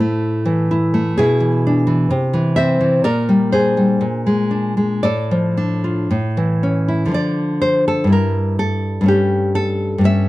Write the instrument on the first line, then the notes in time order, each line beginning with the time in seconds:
nylon-string guitar
Already playing: A2 E4 A4 C5
0.00 A3
0.46 E3
0.71 E4
0.94 A3
1.18 B2 E4 G#4
1.40 E3
1.67 D4
1.87 E3
2.10 C3
2.33 E3
2.56 C4 C5 E5
2.80 E3
3.04 A#2 A#4 D5
3.29 G3
3.52 D4 G#4 C5
3.77 G3
4.01 A#2
4.26 G#3
4.51 D4
4.77 G#3
5.03 A2 A4 D5
5.31 F3
5.57 D4
5.84 F4
6.11 A2
6.37 E3
6.63 C#4
6.88 E4
7.06 D3 F3
7.11 D4 D5
7.62 C5
7.88 A4
8.04 G2 G3
8.09 E4 A#4
8.59 A4
9.01 G2 A3
9.06 C#4 G4
9.55 A4
9.98 G2 A3
10.04 C#4 E5